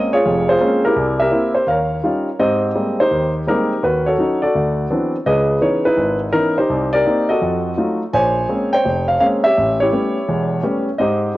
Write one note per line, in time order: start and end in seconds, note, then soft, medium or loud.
0.00 0.14 G#3 medium
0.00 0.14 A#3 soft
0.00 0.14 C4 soft
0.00 0.14 C#4 medium
0.00 0.13 D#5 medium
0.13 0.49 F4 medium
0.13 0.49 G#4 medium
0.13 0.49 C#5 medium
0.26 0.56 F1 medium
0.26 0.56 F2 medium
0.49 0.94 F4 medium
0.49 0.94 G#4 medium
0.49 0.82 C5 medium
0.60 0.85 G#3 medium
0.60 0.85 A#3 medium
0.60 0.85 C4 medium
0.60 0.85 C#4 medium
0.85 1.30 E4 medium
0.85 1.21 G4 medium
0.85 1.20 A#4 medium
0.96 1.27 C2 medium
1.19 1.65 G4 medium
1.19 1.65 A#4 medium
1.19 1.56 E5 medium
1.31 1.56 A#3 soft
1.31 1.56 C4 soft
1.31 1.56 E4 medium
1.55 1.66 C5 medium
1.67 1.98 D#2 medium
1.67 2.36 A#4 medium
1.67 2.36 C#5 medium
1.67 2.23 F5 medium
2.04 2.28 G3 medium
2.04 2.28 C#4 soft
2.04 2.28 D#4 soft
2.04 2.29 F4 medium
2.40 2.70 G#2 medium
2.40 2.70 C4 medium
2.40 3.00 G4 medium
2.40 2.99 C5 medium
2.40 3.00 D#5 medium
2.75 3.00 G3 soft
2.75 3.00 G#3 soft
2.75 3.00 A#3 soft
2.75 3.00 C4 medium
3.00 3.48 D#4 medium
3.00 3.48 G4 medium
3.00 3.33 C5 medium
3.11 3.42 D#2 medium
3.47 3.71 G3 medium
3.47 3.72 G#3 soft
3.47 3.72 A#3 soft
3.47 3.72 C4 medium
3.47 3.81 D#4 medium
3.47 3.81 G4 medium
3.47 3.84 A#4 medium
3.83 4.14 D#2 medium
3.83 4.06 F#4 medium
3.83 4.07 B4 medium
4.06 4.42 F#4 medium
4.06 4.42 A4 medium
4.06 4.40 C#5 medium
4.18 4.43 F#3 soft
4.18 4.43 C#4 soft
4.18 4.44 D#4 medium
4.42 5.10 F#4 medium
4.42 5.10 A4 medium
4.42 5.10 D5 medium
4.55 4.86 D2 medium
4.90 5.15 E3 medium
4.90 5.15 F#3 soft
4.90 5.15 B3 soft
4.90 5.15 C4 soft
4.90 5.15 D4 medium
5.26 5.57 C#2 medium
5.26 5.57 C#3 medium
5.26 5.94 G#4 medium
5.26 5.84 B4 medium
5.26 5.63 D#5 medium
5.61 5.86 E3 soft
5.61 5.86 B3 soft
5.61 5.86 C#4 soft
5.61 5.85 D#4 medium
5.61 5.84 C#5 medium
5.85 6.32 D#4 medium
5.85 6.54 E4 medium
5.85 6.19 B4 medium
5.97 6.28 G#1 medium
6.33 6.58 E3 medium
6.33 6.58 B3 soft
6.33 6.58 C#4 soft
6.33 6.58 D#4 medium
6.33 6.57 A#4 medium
6.58 7.05 D#4 medium
6.58 6.93 G4 medium
6.58 6.94 C5 medium
6.70 7.00 C2 medium
6.93 7.39 G4 medium
6.93 7.38 A#4 medium
6.93 7.30 D5 loud
7.06 7.30 A#3 soft
7.06 7.30 C4 soft
7.06 7.31 D#4 medium
7.29 7.97 F#4 medium
7.29 7.97 A4 medium
7.29 7.97 D#5 medium
7.42 7.72 F2 medium
7.77 8.02 F#3 soft
7.77 8.02 A3 soft
7.77 8.02 D#4 soft
7.77 8.02 F4 medium
8.13 8.44 A#1 medium
8.13 8.73 C5 medium
8.13 8.73 C#5 medium
8.13 8.68 G#5 loud
8.49 8.73 G#3 soft
8.49 8.74 A#3 soft
8.49 8.74 C4 soft
8.49 8.74 C#4 medium
8.73 9.41 C5 medium
8.73 9.41 C#5 medium
8.73 9.06 G5 medium
8.85 9.16 F1 medium
9.08 9.19 F5 medium
9.20 9.45 G#3 medium
9.20 9.45 A#3 soft
9.20 9.45 C4 soft
9.20 9.45 C#4 medium
9.20 9.26 F5 medium
9.44 9.80 G4 medium
9.44 9.78 C#5 medium
9.44 9.77 E5 medium
9.57 9.88 A1 medium
9.80 10.84 E4 medium
9.80 10.84 G4 medium
9.80 10.83 C#5 medium
9.92 10.17 G3 soft
9.92 10.17 A3 soft
9.92 10.17 B3 soft
9.92 10.17 C#4 medium
10.28 10.59 E1 medium
10.28 10.59 E2 medium
10.63 10.88 G3 medium
10.63 10.88 A3 soft
10.63 10.89 B3 soft
10.63 10.89 C#4 medium
10.98 11.31 G#2 medium
10.98 11.37 G4 medium
10.98 11.37 C5 medium
10.98 11.37 D#5 medium